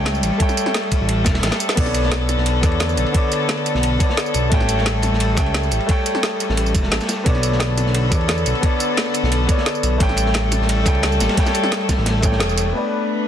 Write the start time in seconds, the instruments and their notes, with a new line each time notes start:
Already playing: analog synth bass C#2, string section G3 A4, grand piano A3 A4 C#5 G5
0.06 snare, closed hi-hat, ride
0.15 tambourine
0.23 analog synth bass A1, closed hi-hat, ride, tambourine
0.38 grand piano A3 A4 C#5, kick, closed hi-hat, ride
0.42 grand piano G5
0.49 snare, ride, tambourine
0.57 closed hi-hat, ride, tambourine
0.66 snare
0.74 snare, closed hi-hat, ride
0.83 ride
0.91 kick, closed hi-hat, ride, tambourine
1.00 analog synth bass A1
1.09 closed hi-hat, ride
1.25 analog synth bass E1, kick, snare, closed hi-hat, ride, tambourine
1.34 analog synth bass E1, snare, ride
1.43 analog synth bass A1, snare, closed hi-hat, ride
1.47 snare, ride
1.51 snare, ride, tambourine
1.60 closed hi-hat, tambourine
1.69 snare
1.75 analog synth bass B1, string section D3, grand piano B3 A4 C#5, kick, closed hi-hat, ride, crash
1.79 grand piano D5
1.86 snare
1.94 closed hi-hat, ride, tambourine
2.03 snare
2.12 snare, closed hi-hat, ride
2.29 snare, closed hi-hat, ride, tambourine
2.37 analog synth bass B1, snare
2.46 closed hi-hat, ride
2.61 analog synth bass E2, grand piano B3 A4 C#5, kick, snare, closed hi-hat, ride, tambourine
2.65 grand piano D5
2.71 ride
2.80 snare, closed hi-hat, ride
2.89 tambourine
2.97 analog synth bass B1, closed hi-hat, ride, tambourine
3.06 ride
3.12 grand piano B3 A4 C#5, kick, closed hi-hat, ride
3.17 grand piano D5
3.32 closed hi-hat, ride, tambourine
3.49 snare, closed hi-hat, ride
3.57 ride
3.66 closed hi-hat, ride, tambourine
3.74 analog synth bass B1, snare
3.83 closed hi-hat, ride
3.98 grand piano B3 A4 C#5, kick, closed hi-hat, ride, tambourine
4.02 grand piano D5
4.09 snare
4.17 snare, closed hi-hat
4.26 tambourine
4.34 analog synth bass B1, closed hi-hat, ride, tambourine
4.49 analog synth bass A1, string section G3, grand piano A3 A4 C#5, kick, closed hi-hat, ride
4.54 grand piano G5
4.60 snare
4.68 closed hi-hat, ride, tambourine
4.78 snare
4.86 snare, closed hi-hat, ride
5.02 snare, closed hi-hat, ride, tambourine
5.12 analog synth bass A1, snare
5.20 closed hi-hat, ride
5.35 analog synth bass C#2, grand piano A3 A4 C#5, kick, snare, closed hi-hat, ride, tambourine
5.40 grand piano G5
5.46 ride
5.54 snare, closed hi-hat, ride
5.63 tambourine
5.71 analog synth bass A1, closed hi-hat, ride, tambourine
5.80 ride
5.87 grand piano A3 A4 C#5, kick, closed hi-hat, ride
5.91 grand piano G5
6.06 closed hi-hat, ride, tambourine
6.15 snare
6.23 snare, closed hi-hat, ride
6.31 ride
6.40 closed hi-hat, ride, tambourine
6.49 analog synth bass A1, snare
6.57 closed hi-hat, ride
6.66 tambourine
6.75 analog synth bass E1, kick, closed hi-hat, ride, tambourine
6.83 analog synth bass E1, snare
6.91 analog synth bass A1, snare, closed hi-hat, ride
7.01 snare, ride, tambourine
7.08 snare, closed hi-hat, ride, tambourine
7.24 analog synth bass B1, string section D3 A4, grand piano B3 A4 C#5, kick, closed hi-hat, ride
7.28 grand piano D5
7.35 snare
7.43 closed hi-hat, ride, tambourine
7.52 snare
7.60 snare, closed hi-hat, ride
7.77 snare, closed hi-hat, ride, tambourine
7.86 analog synth bass B1, snare
7.95 closed hi-hat, ride
8.09 analog synth bass E2, grand piano B3 A4 C#5, kick, snare, closed hi-hat, ride, tambourine
8.14 grand piano D5
8.21 ride
8.28 snare, closed hi-hat, ride
8.38 tambourine
8.46 analog synth bass B1, closed hi-hat, ride, tambourine
8.55 ride
8.61 grand piano B3 A4 C#5, kick, closed hi-hat, ride
8.65 grand piano D5
8.80 closed hi-hat, ride, tambourine
8.97 snare, closed hi-hat, ride
9.06 ride
9.14 closed hi-hat, ride, tambourine
9.23 analog synth bass B1, snare
9.32 closed hi-hat, ride
9.47 grand piano B3 A4 C#5, kick, closed hi-hat, ride, tambourine
9.51 grand piano D5
9.57 snare
9.66 snare, closed hi-hat
9.75 tambourine
9.83 analog synth bass B1, closed hi-hat, ride, tambourine
9.98 analog synth bass A1, string section G3 A4, grand piano A3 A4 C#5, kick, closed hi-hat, ride
10.02 grand piano G5
10.09 snare
10.17 closed hi-hat, ride, tambourine
10.26 snare
10.34 snare, closed hi-hat, ride
10.51 snare, closed hi-hat, ride, tambourine
10.60 analog synth bass A1, snare
10.69 closed hi-hat, ride
10.84 analog synth bass C#2, grand piano A3 A4 C#5, kick, snare, closed hi-hat, ride, tambourine
10.88 grand piano G5
10.95 ride
11.03 snare, closed hi-hat, ride
11.12 tambourine
11.20 analog synth bass A1, snare, closed hi-hat, ride, tambourine
11.29 snare, ride
11.35 grand piano A3 A4 C#5, kick, snare, closed hi-hat, ride
11.40 grand piano G5
11.46 snare, ride, tambourine
11.54 closed hi-hat, ride, tambourine
11.64 snare
11.72 snare, closed hi-hat, ride
11.81 ride
11.89 kick, snare, closed hi-hat, ride, tambourine
11.98 analog synth bass A1, snare
12.06 snare, closed hi-hat, ride
12.21 analog synth bass A1, grand piano A3 A4 C#5, kick, snare, closed hi-hat, ride, tambourine
12.25 grand piano G5
12.32 snare
12.40 analog synth bass E1, snare, closed hi-hat, ride
12.49 tambourine
12.58 closed hi-hat, ride, tambourine
12.72 string section A3 D4 B4, grand piano B3 A4 B4, closed hi-hat
12.77 grand piano D5
12.92 closed hi-hat, tambourine
13.09 closed hi-hat